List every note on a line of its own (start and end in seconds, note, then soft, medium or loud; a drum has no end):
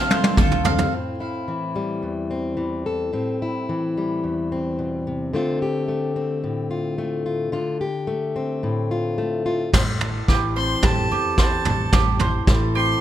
0.00 0.89 C3 medium
0.00 0.89 F3 medium
0.00 0.10 A3 medium
0.00 0.89 A3 medium
0.00 0.10 C4 medium
0.00 0.89 D4 medium
0.00 0.11 F4 medium
0.00 0.37 F4 medium
0.00 0.38 F5 medium
0.00 0.64 F5 medium
0.10 0.37 C4 soft
0.10 0.38 F4 soft
0.10 0.38 A4 soft
0.10 0.93 C5 medium
0.10 high tom medium
0.24 high tom medium
0.37 0.83 D2 medium
0.37 0.65 A3 medium
0.37 0.65 C4 medium
0.37 0.93 F4 medium
0.37 0.65 F4 medium
0.37 0.63 A4 medium
0.37 kick loud
0.37 mid tom medium
0.51 mid tom medium
0.64 0.94 C4 soft
0.64 0.93 F4 medium
0.64 0.92 A4 medium
0.64 0.93 F5 medium
0.64 floor tom medium
0.78 floor tom medium
0.92 2.03 A2 medium
0.92 2.30 C4 soft
1.20 2.86 E4 soft
1.48 2.56 E3 soft
1.76 3.96 G3 soft
2.03 3.13 E2 soft
2.31 3.13 C4 soft
2.57 3.09 E3 soft
2.86 3.42 A4 soft
3.13 4.23 A2 medium
3.13 4.52 C4 soft
3.42 5.35 E4 soft
3.69 5.31 E3 medium
3.98 5.34 G3 soft
4.24 5.34 E2 medium
4.52 5.34 C4 soft
4.79 5.06 B2 soft
5.07 5.34 C3 soft
5.33 7.51 D3 medium
5.33 5.88 A3 soft
5.33 6.16 C4 soft
5.33 5.62 F4 soft
5.62 6.70 G4 soft
5.88 6.98 A3 medium
6.16 7.55 C4 soft
6.44 7.54 A2 soft
6.71 7.25 F4 soft
6.98 7.84 A3 soft
7.26 7.50 F4 soft
7.52 9.73 D3 medium
7.52 7.80 F4 medium
7.81 8.91 G4 soft
8.07 9.17 A3 medium
8.36 9.70 C4 soft
8.63 9.71 A2 soft
8.91 9.45 F4 medium
9.18 9.70 A3 medium
9.46 9.70 F4 soft
9.72 10.18 A1 medium
9.72 10.83 A2 medium
9.72 10.55 C5 medium
9.72 kick medium
9.72 snare soft
9.72 floor tom loud
9.72 crash medium
10.01 10.82 A4 medium
10.01 floor tom medium
10.28 10.73 A1 medium
10.28 11.36 E3 medium
10.28 11.10 G4 medium
10.28 kick medium
10.28 snare soft
10.56 11.11 C4 soft
10.56 11.37 C5 medium
10.56 10.86 C6 medium
10.83 11.06 A1 medium
10.83 11.93 E2 medium
10.83 11.90 G4 medium
10.83 11.64 A4 medium
10.83 11.39 A5 medium
10.83 kick loud
10.83 snare soft
10.83 floor tom medium
11.11 11.56 E2 medium
11.11 12.75 C4 soft
11.11 11.92 G4 medium
11.38 11.90 E3 medium
11.38 12.19 C5 medium
11.38 11.90 A5 medium
11.38 kick medium
11.38 snare medium
11.65 11.88 A1 medium
11.65 12.47 A4 medium
11.65 floor tom medium
11.93 12.38 A1 medium
11.93 13.01 A2 medium
11.93 12.74 G4 medium
11.93 kick loud
11.93 snare medium
11.93 floor tom loud
12.20 13.01 C5 medium
12.20 floor tom medium
12.47 12.92 A1 medium
12.47 13.01 E3 medium
12.47 13.01 A4 medium
12.47 kick loud
12.47 snare medium
12.75 13.01 C4 medium
12.75 13.01 G4 medium
12.75 13.01 C6 medium